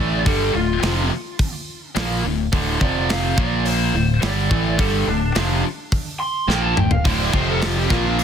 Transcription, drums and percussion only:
0.26 kick loud
0.26 open hi-hat medium
0.83 snare loud
0.83 open hi-hat medium
1.39 kick loud
1.39 open hi-hat medium
1.96 snare loud
1.96 open hi-hat medium
2.53 kick loud
2.53 open hi-hat medium
2.81 kick loud
3.09 snare loud
3.09 open hi-hat medium
3.38 kick loud
3.65 open hi-hat medium
4.22 snare loud
4.22 open hi-hat medium
4.51 kick loud
4.79 kick loud
4.79 open hi-hat medium
5.35 snare loud
5.35 open hi-hat medium
5.92 kick loud
5.92 open hi-hat medium
6.50 snare medium
6.77 mid tom medium
6.91 floor tom medium
7.05 kick loud
7.05 open hi-hat medium
7.33 kick loud
7.62 snare loud
7.62 open hi-hat medium
7.90 kick loud
7.90 snare soft
8.19 open hi-hat medium

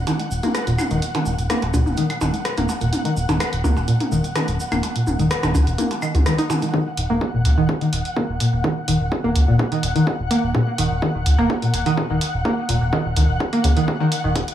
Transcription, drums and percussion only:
0.07 closed hi-hat medium
0.07 high tom soft
0.07 percussion blips medium
0.07 cabasa medium
0.20 closed hi-hat soft
0.31 cabasa medium
0.43 closed hi-hat soft
0.43 high tom soft
0.43 cabasa soft
0.55 cross-stick medium
0.55 closed hi-hat medium
0.55 percussion blips soft
0.55 cabasa medium
0.67 closed hi-hat soft
0.67 cabasa soft
0.79 high tom soft
0.79 cabasa medium
0.79 percussion blips medium
0.91 closed hi-hat soft
0.91 cabasa soft
1.02 closed hi-hat medium
1.02 cabasa soft
1.15 closed hi-hat soft
1.15 high tom soft
1.15 percussion blips medium
1.26 cabasa medium
1.39 closed hi-hat soft
1.39 cabasa soft
1.50 cross-stick medium
1.50 closed hi-hat medium
1.50 high tom soft
1.50 cabasa soft
1.62 closed hi-hat soft
1.62 percussion blips soft
1.74 percussion blips medium
1.74 cabasa medium
1.86 high tom soft
1.86 cabasa soft
1.97 closed hi-hat medium
1.97 cabasa medium
2.10 closed hi-hat soft
2.10 percussion blips medium
2.21 high tom soft
2.21 percussion blips medium
2.21 cabasa medium
2.34 closed hi-hat soft
2.34 cabasa soft
2.45 cross-stick medium
2.45 closed hi-hat medium
2.45 cabasa soft
2.57 closed hi-hat soft
2.57 high tom soft
2.57 cabasa soft
2.69 percussion blips soft
2.69 cabasa medium
2.81 closed hi-hat soft
2.81 cabasa soft
2.93 closed hi-hat medium
2.93 high tom soft
2.93 cabasa soft
3.05 closed hi-hat soft
3.17 cabasa medium
3.29 closed hi-hat soft
3.29 high tom soft
3.29 percussion blips medium
3.29 cabasa soft
3.40 cross-stick medium
3.40 closed hi-hat medium
3.40 cabasa medium
3.40 percussion blips medium
3.53 closed hi-hat soft
3.64 high tom soft
3.64 percussion blips medium
3.64 cabasa medium
3.77 percussion blips soft
3.77 cabasa soft
3.88 closed hi-hat medium
3.88 cabasa soft
4.00 closed hi-hat soft
4.00 high tom soft
4.12 cabasa medium
4.24 closed hi-hat soft
4.24 cabasa soft
4.36 cross-stick medium
4.36 closed hi-hat medium
4.36 high tom soft
4.36 percussion blips medium
4.36 cabasa soft
4.48 closed hi-hat soft
4.48 cabasa soft
4.60 cabasa medium
4.72 closed hi-hat soft
4.72 high tom soft
4.72 cabasa soft
4.72 percussion blips medium
4.83 closed hi-hat medium
4.83 percussion blips soft
4.83 cabasa medium
4.96 closed hi-hat soft
5.07 high tom soft
5.07 cabasa medium
5.19 closed hi-hat soft
5.19 cabasa soft
5.31 cross-stick loud
5.31 closed hi-hat medium
5.31 cabasa soft
5.43 cross-stick medium
5.43 closed hi-hat soft
5.43 high tom soft
5.43 percussion blips medium
5.43 cabasa soft
5.55 percussion blips medium
5.55 cabasa medium
5.67 closed hi-hat soft
5.67 cabasa soft
5.78 closed hi-hat medium
5.78 high tom soft
5.78 cabasa medium
5.91 closed hi-hat soft
5.91 percussion blips soft
5.91 cabasa soft
6.02 cabasa medium
6.02 percussion blips medium
6.15 closed hi-hat soft
6.15 high tom soft
6.15 cabasa soft
6.26 cross-stick medium
6.26 closed hi-hat medium
6.26 cabasa soft
6.38 closed hi-hat soft
6.38 cabasa soft
6.50 high tom soft
6.50 percussion blips medium
6.50 cabasa medium
6.62 closed hi-hat soft
6.62 cabasa soft
6.74 kick loud
6.97 open hi-hat medium
7.21 kick loud
7.45 open hi-hat medium
7.69 kick loud
7.81 open hi-hat soft
7.93 open hi-hat medium
8.05 open hi-hat soft
8.17 kick loud
8.40 open hi-hat medium
8.64 kick loud
8.88 open hi-hat medium
9.12 kick loud
9.36 open hi-hat loud
9.59 kick loud
9.72 open hi-hat soft
9.83 open hi-hat loud
9.96 open hi-hat soft
10.07 kick loud
10.31 open hi-hat medium
10.55 kick loud
10.78 open hi-hat loud
11.02 kick loud
11.26 open hi-hat loud
11.50 kick loud
11.62 open hi-hat soft
11.74 open hi-hat loud
11.86 open hi-hat soft
11.97 kick loud
12.21 open hi-hat loud
12.45 kick loud
12.69 open hi-hat medium
12.93 kick loud
13.16 open hi-hat medium
13.40 kick loud
13.53 open hi-hat soft
13.64 open hi-hat loud
13.77 open hi-hat soft
13.88 kick loud
14.12 open hi-hat medium
14.36 kick loud
14.36 closed hi-hat medium
14.48 closed hi-hat soft

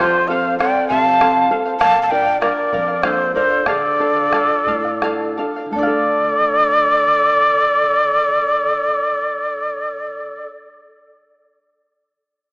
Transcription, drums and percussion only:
0.00 bombo rim medium
0.00 bombo low medium
0.60 bombo rim medium
0.91 bombo low medium
1.06 bombo rim soft
1.21 bombo rim medium
1.66 bombo rim soft
1.81 bombo rim medium
1.81 bombo low medium
2.42 bombo rim medium
2.73 bombo low medium
2.88 bombo rim soft
3.03 bombo rim medium
3.50 bombo rim soft
3.66 bombo rim medium
3.66 bombo low medium
4.33 bombo rim medium
4.50 bombo rim soft
4.67 bombo low medium
5.02 bombo rim medium
5.38 bombo rim soft
5.75 bombo low medium

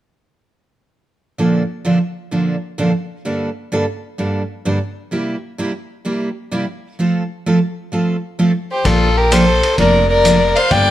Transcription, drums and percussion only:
8.85 kick soft
8.85 ride medium
9.32 hi-hat pedal medium
9.32 ride medium
9.63 ride medium
9.78 kick soft
9.78 ride soft
10.25 hi-hat pedal soft
10.25 ride medium
10.56 ride soft
10.71 kick soft
10.71 ride medium

